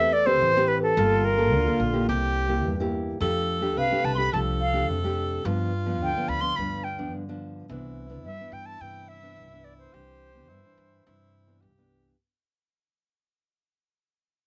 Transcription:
Already playing: E2 A3 C4 G4 A4 B4 E5
0.13 D5
0.26 C4 G4 B4 C5
0.41 A1 E3
0.57 C4 G4 B4
0.68 B4
0.82 A4
0.97 G1 G3 A#3 F4 A4
1.25 A#4
1.38 A#3 F4 A4
1.53 D2 D3
1.67 A#3 F4 A4
1.80 A#1
1.93 A#3 E4 G4
2.09 C2 C3 G4
2.48 A#3 E4 G4
2.65 E2 G2
2.80 A#3 E4 G4
3.20 F2 F3 A3 D4 G4 A4
3.61 A3 D4 G4
3.77 C2 C3 B4 F5
3.91 A3 D4 G4
4.04 C2 A5
4.15 A3 D4 G4 B5 C6
4.33 C2 F3 A3 D4 G4 A4 A5
4.60 F5
4.73 A3 D4 G4
4.89 F2 C3
5.04 A3 D4 G4
5.45 G2 F3 B3 D4 F4
5.86 F3 B3 D4
6.01 D2 D3 G5
6.17 F3 B3 D4
6.28 D2 B5
6.41 F3 B3 D4 C6
6.56 D2 G2 F3 B3 D4 B5
6.84 G5
6.98 F3 B3 D4
7.13 G2 D3
7.29 F3 B3 D4
7.69 C2 C3 E3 B3 D4 E4
8.09 E3 B3 D4
8.25 G2 E5
8.40 E3 B3 D4
8.52 G2 G5
8.66 A5
8.81 G2 C3 E3 B3 D4 G5
9.08 E5
9.22 E3 B3 D4
9.37 C2 G2
9.53 E3 B3 D4
9.65 D5
9.78 C5
9.94 C2 C3 E3 D4 G4
10.35 E3 B3 D4
10.49 G2 E4
10.65 E3 D4
10.77 G2
11.06 G2 C3 E3 D4 E4
11.47 E3 B3 D4
11.61 C2 G2 G4
11.78 E3 B3 D4

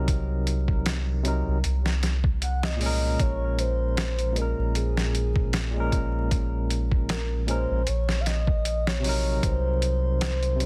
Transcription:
Already playing: C2 C3 F#3 D#4 A#4
0.08 kick, closed hi-hat
0.47 closed hi-hat
0.68 kick
0.86 snare, closed hi-hat
1.23 C3 F#3 D#4, closed hi-hat
1.28 A#4
1.47 C2
1.64 C2, closed hi-hat
1.86 snare
2.03 snare, closed hi-hat
2.24 kick
2.42 F#5, closed hi-hat
2.63 D#5, snare
2.76 A#2 G#3
2.81 C#4, open hi-hat
2.86 A#4
3.19 A#1 C#5, kick, closed hi-hat
3.59 C5, closed hi-hat
3.97 snare, closed hi-hat
4.19 closed hi-hat
4.32 A#2 G#3
4.36 C#4 A#4, closed hi-hat
4.42 A#4
4.58 A#1
4.75 G#4, closed hi-hat
4.97 snare
5.15 closed hi-hat
5.36 kick
5.53 snare, closed hi-hat
5.71 A#2 G#3
5.77 C#4 A#4
5.92 kick, closed hi-hat
6.31 kick, closed hi-hat
6.70 closed hi-hat
6.92 kick
7.09 A#4, snare, closed hi-hat
7.46 A#2 G#3 C#4 C5, closed hi-hat
7.51 A#4
7.71 A#1
7.87 A#1 C#5, closed hi-hat
8.09 snare
8.21 F5
8.26 D#5, snare, closed hi-hat
8.47 kick
8.65 D#5, closed hi-hat
8.87 C#5, snare
9.00 C3 F#3
9.04 D#4, open hi-hat
9.09 A#4
9.43 C2 C5, kick, closed hi-hat
9.82 closed hi-hat
10.21 snare, closed hi-hat
10.43 closed hi-hat
10.56 C3 F#3
10.60 D#4, closed hi-hat

